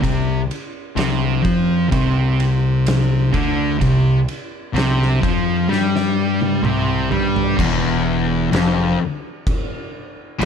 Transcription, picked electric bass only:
0.04 C2
0.96 C2
1.45 F2
1.92 C2
3.34 D2
3.82 C2
4.74 C2
5.23 F2
5.69 G2
6.63 C2
7.11 G2
7.59 E1
8.52 F1
10.40 A1

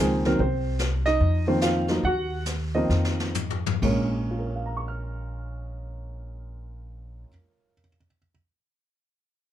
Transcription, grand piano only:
Already playing: D#3 F3 A#3 C4
0.00 G#3 G#4
0.26 D#3 F#3 A#3 C4 A#4
0.40 C4 C5
1.06 D#4 D#5
1.47 D#3 F3 A#3 C4
1.62 F4 F5
1.89 F3 F#3 A#3 D#4
2.05 F#4 F#5
2.75 D#3 F3 A#3 C4 D#4 D#5
3.82 A#2 G#3 A#3 C#4 C#5
4.31 F4
4.38 A#4
4.47 C#5
4.56 F5
4.66 A#5
4.77 C#6
4.88 F6

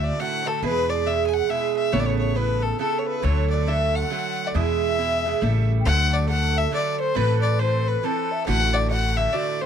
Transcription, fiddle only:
0.04 D5
0.20 F#5
0.47 A4
0.64 B4
0.90 D5
1.07 E5
1.27 G#5
1.34 F#5
1.50 E5
1.76 E5
1.93 C#5
1.99 D5
2.06 C#5
2.19 C#5
2.36 B4
2.63 A4
2.80 A4
2.99 C#5
3.07 B4
3.24 C#5
3.50 D5
3.68 E5
3.96 F#5
4.47 D5
4.56 E5
5.85 F#5
6.14 D5
6.29 F#5
6.58 E5
6.74 D5
7.00 C5
7.16 B4
7.42 D5
7.60 C5
7.88 B4
8.04 A4
8.46 F#5
8.73 D5
8.90 F#5
9.17 E5
9.33 D5
9.61 C5

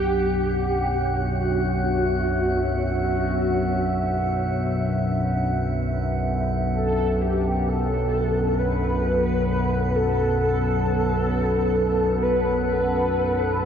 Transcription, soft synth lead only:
Already playing: G4
1.17 F#4
3.01 F#4
6.74 A4
7.21 G4
7.68 A4
8.58 B4
9.95 A4
10.38 A4
12.22 B4
12.64 B4

